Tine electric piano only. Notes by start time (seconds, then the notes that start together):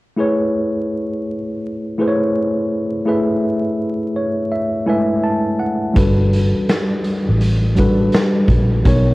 0.17 A3 E4 G#4 B4 C#5
1.98 A3 E4 G#4 B4 C5
2.07 C#5
3.05 A3 E4 G#4 B4 E5
4.16 C#5
4.52 E5
4.86 G#3 A3 E4 B4 E5 G#5
5.24 A5
5.60 F#5
5.94 G3 D4 F#4 A4 B4
7.75 G3 D4 F#4 A4 B4
8.84 B2 B3 D#4 A#4 C#5